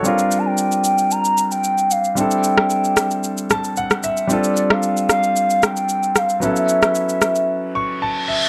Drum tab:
SH |xxx-xxxxxxxxxxxx|xxx-xxxxxxxxxxxx|xxx-xxxxxxxxxxxx|xxxxxxxx--------|
SD |----------------|---r--r---r--r--|---r--r---r---r-|---r--r---------|